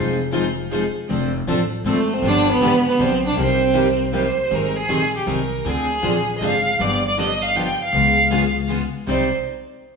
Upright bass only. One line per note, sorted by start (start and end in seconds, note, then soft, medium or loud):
0.00 0.87 F1 medium
1.10 1.40 F1 medium
1.47 1.80 A1 medium
1.84 2.17 G#1 medium
2.22 2.53 G1 medium
2.61 2.93 G#1 medium
2.99 3.32 B1 medium
3.37 4.28 C2 medium
4.51 4.82 G#1 medium
4.88 5.21 A#1 medium
5.27 5.59 C2 medium
5.65 5.95 D2 medium
6.03 6.35 A#1 medium
6.40 6.73 G#1 medium
6.79 7.71 G1 medium
7.93 8.84 C#2 medium
9.07 9.30 C2 medium